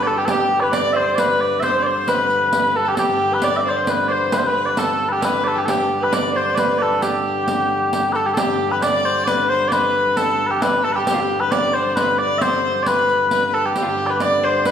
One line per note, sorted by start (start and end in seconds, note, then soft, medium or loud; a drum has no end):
0.00 2.96 G2 medium
0.00 2.97 D3 medium
0.00 0.16 G4 medium
0.00 1.58 A4 medium
0.00 0.61 B4 medium
0.00 0.07 D5 medium
0.07 0.17 A4 medium
0.07 0.18 A4 medium
0.16 0.27 G4 medium
0.16 0.25 G4 medium
0.25 0.59 G4 medium
0.25 2.63 G4 medium
0.25 0.30 A4 loud
0.25 riq medium
0.30 0.60 G4 loud
0.60 1.01 B4 medium
0.60 0.72 B4 medium
0.60 0.74 B4 medium
0.60 0.63 D5 medium
0.72 2.57 D5 medium
0.72 0.94 D5 medium
0.72 0.93 D5 loud
0.72 riq medium
0.93 1.23 C5 medium
0.93 1.20 C5 medium
0.93 1.15 C5 medium
0.93 0.96 E5 medium
1.15 1.68 B4 medium
1.15 1.63 B4 medium
1.15 1.41 B4 medium
1.15 1.19 D5 medium
1.15 riq medium
1.41 1.60 D5 loud
1.60 1.68 C5 medium
1.60 1.79 C5 medium
1.60 1.83 C5 medium
1.60 1.64 E5 medium
1.60 riq medium
1.69 1.73 C5 medium
1.74 1.85 C5 medium
1.80 1.87 D5 medium
1.80 1.86 D5 medium
1.86 2.14 C5 medium
1.86 2.10 C5 medium
1.86 2.09 C5 medium
2.08 3.31 B4 medium
2.08 2.52 B4 medium
2.08 2.76 B4 loud
2.08 riq medium
2.30 riq soft
2.53 2.82 B4 medium
2.53 riq medium
2.75 4.79 A4 medium
2.75 2.88 A4 medium
2.84 2.98 G4 medium
2.84 2.89 A4 soft
2.88 2.95 G4 medium
2.95 8.36 G2 medium
2.95 8.37 D3 medium
2.95 5.34 G4 medium
2.95 3.45 G4 medium
2.95 3.00 A4 medium
2.95 riq medium
3.00 3.34 G4 medium
3.32 3.87 B4 medium
3.32 3.44 B4 medium
3.42 5.27 D5 medium
3.42 3.64 D5 medium
3.42 3.56 D5 loud
3.42 riq medium
3.56 3.69 D5 medium
3.56 3.60 E5 medium
3.65 3.72 C5 medium
3.65 3.90 C5 medium
3.71 3.78 D5 medium
3.76 3.86 C5 medium
3.87 4.11 B4 medium
3.87 4.16 B4 medium
3.87 4.08 B4 medium
3.87 riq medium
4.08 4.34 C5 medium
4.08 4.38 C5 medium
4.08 4.34 C5 medium
4.08 4.12 D5 medium
4.32 4.47 B4 medium
4.32 4.46 B4 medium
4.32 4.38 B4 loud
4.32 riq medium
4.38 4.47 C5 medium
4.47 4.80 B4 medium
4.47 4.66 B4 loud
4.47 5.23 B4 medium
4.66 4.78 B4 medium
4.66 4.69 D5 medium
4.77 5.09 A4 medium
4.77 5.12 A4 medium
4.77 5.45 A4 medium
4.77 riq medium
5.09 5.23 G4 medium
5.09 5.25 G4 medium
5.09 5.12 B4 medium
5.22 5.57 B4 medium
5.22 6.02 B4 medium
5.22 5.44 B4 medium
5.22 riq medium
5.44 6.79 A4 medium
5.44 5.59 A4 medium
5.44 5.48 D5 medium
5.56 5.67 G4 medium
5.56 5.68 G4 medium
5.56 5.66 G4 medium
5.66 5.99 G4 medium
5.66 7.02 G4 medium
5.66 5.70 A4 medium
5.66 riq medium
5.70 6.04 G4 medium
6.00 6.14 B4 medium
6.00 6.41 B4 medium
6.00 6.14 B4 medium
6.12 6.34 D5 medium
6.12 7.97 D5 medium
6.12 6.37 D5 loud
6.12 riq medium
6.34 6.58 C5 medium
6.34 6.63 C5 medium
6.34 6.55 C5 medium
6.55 7.01 B4 medium
6.55 8.62 B4 medium
6.55 6.79 B4 medium
6.55 6.59 D5 medium
6.55 riq medium
6.79 8.99 A4 medium
6.79 7.02 A4 medium
6.79 6.82 D5 medium
7.02 8.11 G4 medium
7.02 8.13 G4 medium
7.02 9.38 G4 medium
7.02 riq medium
7.48 riq medium
7.93 riq medium
8.13 8.20 A4 medium
8.13 8.26 A4 medium
8.13 8.16 B4 medium
8.13 riq soft
8.26 8.36 G4 medium
8.26 8.34 G4 medium
8.34 13.74 G2 medium
8.34 13.75 D3 medium
8.34 8.69 G4 medium
8.34 8.39 A4 loud
8.34 riq medium
8.39 8.72 G4 loud
8.70 8.81 B4 medium
8.70 8.82 B4 medium
8.82 9.29 D5 loud
8.82 9.05 D5 loud
8.82 riq medium
9.05 9.24 C5 loud
9.24 9.49 B4 loud
9.24 9.49 B4 medium
9.24 9.28 D5 medium
9.24 riq medium
9.49 9.68 C5 loud
9.49 9.71 C5 medium
9.68 10.19 B4 medium
9.68 9.72 D5 loud
9.68 riq medium
9.72 10.17 B4 loud
10.17 10.46 A4 medium
10.17 10.52 A4 medium
10.17 riq medium
10.46 10.61 G4 medium
10.46 10.51 B4 medium
10.51 10.62 G4 medium
10.62 10.84 B4 loud
10.62 10.83 B4 medium
10.62 riq medium
10.84 10.92 A4 loud
10.84 10.95 A4 medium
10.92 11.06 G4 medium
10.92 11.07 G4 medium
10.92 10.96 B4 medium
11.07 11.40 G4 loud
11.07 11.15 G4 medium
11.07 riq medium
11.14 11.22 F4 medium
11.20 11.40 G4 medium
11.40 11.51 B4 medium
11.40 11.54 B4 medium
11.51 11.74 D5 loud
11.51 11.77 D5 medium
11.51 riq medium
11.74 11.96 C5 loud
11.74 11.97 C5 medium
11.96 12.18 B4 medium
11.96 riq medium
12.18 12.38 D5 loud
12.18 12.44 D5 medium
12.38 12.83 C5 loud
12.38 12.87 C5 medium
12.38 12.42 E5 loud
12.38 riq medium
12.83 12.87 D5 loud
12.83 riq medium
12.87 13.54 B4 loud
12.87 13.29 B4 medium
13.09 riq soft
13.31 13.47 B4 medium
13.31 riq medium
13.48 13.56 B4 medium
13.54 13.66 A4 medium
13.54 13.76 A4 medium
13.66 13.77 G4 medium
13.75 14.71 G2 medium
13.75 14.71 D3 medium
13.75 14.71 G4 medium
13.75 14.07 G4 medium
13.75 13.84 G4 medium
13.75 riq medium
13.83 13.91 F4 medium
13.89 14.11 G4 medium
14.07 14.49 B4 medium
14.07 14.21 B4 medium
14.07 14.11 D5 medium
14.11 14.22 B4 medium
14.20 14.71 D5 medium
14.20 14.45 D5 medium
14.20 14.45 D5 loud
14.20 riq medium
14.43 14.71 C5 medium
14.43 14.67 C5 medium
14.65 14.71 B4 medium
14.65 14.71 B4 loud
14.65 riq medium